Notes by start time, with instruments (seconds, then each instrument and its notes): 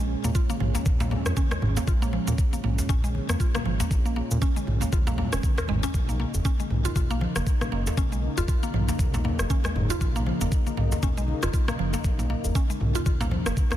Already playing: analog synth bass A#1, analog synth pad A#2 G#3 C#4
0.24 analog synth bass A#2, synth pluck A#3, djembe tone, shaker
0.35 synth pluck F4, kick, muted conga, shaker
0.50 synth pluck A#3, high conga, shaker
0.60 analog synth bass A#1, synth pluck F3, mid tom, high conga
0.75 synth pluck A#3, djembe slap, muted conga, shaker
0.86 analog synth bass A#1, kick, high conga, djembe tone, shaker
1.00 synth pluck A#3, djembe slap, low conga, shaker
1.11 synth pluck A#3, muted conga, djembe tone, low conga
1.26 analog synth bass F2, cross-stick, shaker
1.37 synth pluck C#4, kick, high conga, shaker
1.51 synth pluck G#3, cross-stick, djembe slap, muted conga, djembe tone, shaker
1.62 analog synth bass G#1, mid tom, high conga, djembe tone, low conga
1.77 synth pluck A#3, djembe slap, shaker
1.88 analog synth bass A#1, synth pluck F4, kick, muted conga, shaker
2.02 synth pluck A#3, low conga, shaker
2.13 synth pluck F3
2.27 analog synth bass A#2, synth pluck A#3, djembe tone, shaker
2.38 kick, muted conga, shaker
2.53 synth pluck A#3, high conga, shaker
2.64 analog synth bass A#1, synth pluck A#3, mid tom, high conga
2.78 djembe slap, muted conga, shaker
2.89 analog synth bass A#1, synth pluck C#4, kick, djembe tone, shaker
3.04 synth pluck G#3, shaker
3.15 muted conga, high conga
3.29 analog synth bass F2, synth pluck A#3, cross-stick, djembe slap, shaker
3.40 synth pluck F4, kick, shaker
3.55 synth pluck A#3, cross-stick, muted conga, high conga, low conga, shaker
3.65 analog synth bass G#1, synth pluck F3
3.80 synth pluck A#3, djembe slap, djembe tone, shaker
3.91 analog synth bass A#1, kick, muted conga, shaker
4.05 synth pluck A#3, shaker
4.16 synth pluck A#3
4.31 analog synth bass A#2, djembe tone, shaker
4.41 synth pluck C#4, kick, muted conga, shaker
4.56 synth pluck G#3, high conga, shaker
4.67 analog synth bass A#1, mid tom, high conga
4.81 synth pluck A#3, djembe slap, muted conga, shaker
4.93 analog synth bass A#1, synth pluck F4, kick, high conga, djembe tone, shaker
5.07 synth pluck A#3, djembe slap, low conga, shaker
5.18 synth pluck A#3, muted conga, djembe tone, low conga
5.33 analog synth bass F1, synth pluck C#4, cross-stick, shaker
5.43 kick, high conga, shaker
5.58 synth pluck A#4, cross-stick, djembe slap, muted conga, djembe tone, shaker
5.68 analog synth bass G#1, synth pluck G#3, mid tom, high conga, djembe tone, low conga
5.83 synth pluck C#4, djembe slap, shaker
5.94 analog synth bass B1, analog synth pad C#3 A#3 D#4, kick, muted conga, shaker
6.08 synth pluck A#3, low conga, shaker
6.20 synth pluck A#3
6.34 analog synth bass F#1, djembe tone, shaker
6.45 synth pluck C#4, kick, shaker
6.59 synth pluck G#3, high conga, shaker
6.70 analog synth bass B1, mid tom, high conga
6.85 synth pluck F4, djembe slap, muted conga, shaker
6.96 analog synth bass B1, synth pluck F4, kick, djembe tone, shaker
7.11 synth pluck A#3, shaker
7.21 synth pluck F3, muted conga, high conga
7.36 analog synth bass F#1, synth pluck A#3, cross-stick, djembe slap, shaker
7.47 kick, shaker
7.61 synth pluck A#3, cross-stick, muted conga, high conga, low conga, shaker
7.72 analog synth bass F#1, synth pluck A#3
7.87 djembe slap, djembe tone, shaker
7.97 analog synth bass B1, synth pluck C#4, kick, muted conga, shaker
8.12 synth pluck G#3, shaker
8.37 analog synth bass F#1, synth pluck F4, djembe tone, shaker
8.48 synth pluck F4, kick, muted conga, shaker
8.63 synth pluck A#3, high conga, shaker
8.74 analog synth bass B1, synth pluck F3, mid tom, high conga
8.88 synth pluck A#3, muted conga, djembe slap, shaker
8.99 analog synth bass B1, kick, high conga, djembe tone, shaker
9.13 synth pluck A#3, djembe slap, low conga, shaker
9.24 synth pluck A#3, muted conga, djembe tone, low conga
9.39 analog synth bass F#1, cross-stick, shaker
9.50 synth pluck C#4, kick, high conga, shaker
9.64 synth pluck G#3, cross-stick, djembe slap, muted conga, djembe tone, shaker
9.75 analog synth bass F#1, mid tom, high conga, djembe tone, low conga
9.90 synth pluck F4, djembe slap, shaker
10.01 analog synth bass B1, synth pluck F4, kick, muted conga, shaker
10.15 synth pluck A#3, low conga, shaker
10.27 synth pluck F3
10.41 analog synth bass F#1, synth pluck A#3, djembe tone, shaker
10.52 kick, muted conga, shaker
10.67 synth pluck A#3, high conga, shaker
10.77 analog synth bass B1, synth pluck A#3, mid tom, high conga
10.92 djembe slap, muted conga, shaker
11.03 analog synth bass B1, synth pluck C#4, kick, djembe tone, shaker
11.17 synth pluck G#3, shaker
11.28 muted conga, high conga
11.43 analog synth bass F#1, synth pluck F4, cross-stick, djembe slap, shaker
11.54 synth pluck F4, kick, shaker
11.68 synth pluck A#3, cross-stick, muted conga, high conga, low conga, shaker
11.79 analog synth bass F#1, synth pluck F3
11.93 synth pluck A#3, djembe slap, djembe tone, shaker
12.04 analog synth bass B1, kick, muted conga, shaker
12.19 synth pluck A#3, low conga, shaker
12.30 synth pluck A#3
12.44 analog synth bass F#1, djembe tone, shaker
12.55 synth pluck C#4, kick, muted conga, shaker
12.70 synth pluck G#3, high conga, shaker
12.80 analog synth bass B1, mid tom, high conga
12.95 synth pluck F4, djembe slap, muted conga, shaker
13.06 analog synth bass B1, synth pluck F4, kick, high conga, djembe tone, shaker
13.20 synth pluck A#3, djembe slap, low conga, shaker
13.31 synth pluck F3, muted conga, djembe tone, low conga
13.46 analog synth bass F#1, synth pluck A#3, cross-stick, shaker
13.57 kick, high conga, shaker
13.71 synth pluck A#3, cross-stick, djembe slap, muted conga, djembe tone, shaker